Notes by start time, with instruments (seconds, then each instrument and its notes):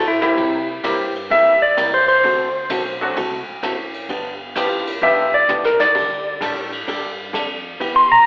Already playing: upright bass A2
0.08 electric slide guitar E4
0.21 upright piano G3 A#3 C4 E4 G4, electric slide guitar E4, snare
0.37 hollow-body jazz guitar C3 G3 A#3 E4 G4, upright bass C3, ride
0.83 upright bass G2, hollow-body jazz guitar C3 G3 A#3 E4 G4, upright piano G3 A#3 C4 E4 G4, hi-hat pedal, ride
1.15 ride
1.30 upright bass E2, hollow-body jazz guitar C3 G3 A#3 E4 G4, electric slide guitar E5, ride
1.62 electric slide guitar D5
1.77 upright bass C2, hollow-body jazz guitar C3 G3 A#3 E4 G4, hi-hat pedal, ride
1.94 electric slide guitar C5
2.08 electric slide guitar C5, ride
2.23 upright bass D2, hollow-body jazz guitar D3 A3 C4 F#4 A4, ride
2.70 upright bass B1, hollow-body jazz guitar D3 A3 C4 F#4 A4, hi-hat pedal, ride
3.01 upright piano F#3 A3 C4 D4 F#4
3.16 upright bass C2, hollow-body jazz guitar D3 A3 C4 F#4 A4, ride
3.48 muted upright bass stroke
3.63 upright bass A1, hollow-body jazz guitar D3 A3 C4 F#4 A4, hi-hat pedal, ride
3.94 ride
4.09 upright bass G1, hollow-body jazz guitar D3 F3 B3 D4 G4, ride
4.55 upright bass A1, hollow-body jazz guitar D3 F3 B3 D4 G4, upright piano G3 B3 D4 F4 G4, hi-hat pedal, ride
4.87 ride
5.02 upright bass B1, hollow-body jazz guitar D3 F3 B3 D4 G4, upright piano G3 B3 D4 F4 G4, electric slide guitar E5
5.34 electric slide guitar D5
5.48 upright bass C2, hollow-body jazz guitar D3 F3 B3 D4 G4, hi-hat pedal, high tom
5.64 electric slide guitar A#4, snare
5.80 electric slide guitar D5, snare
5.95 upright bass D2, hollow-body jazz guitar D3 G3 D4 G4 A4, kick, crash
6.41 upright bass A2, hollow-body jazz guitar D3 G3 D4 G4 A4, upright piano G3 A3 D4 G4 A4, hi-hat pedal, ride
6.72 ride
6.87 upright bass G2, hollow-body jazz guitar D3 G3 D4 G4 A4, ride
7.33 upright bass F2, hollow-body jazz guitar D3 G3 D4 G4 A4, hi-hat pedal, ride
7.80 upright bass E2, hollow-body jazz guitar E3 B3 E4 G4, ride
7.96 electric slide guitar C6
8.12 electric slide guitar A#5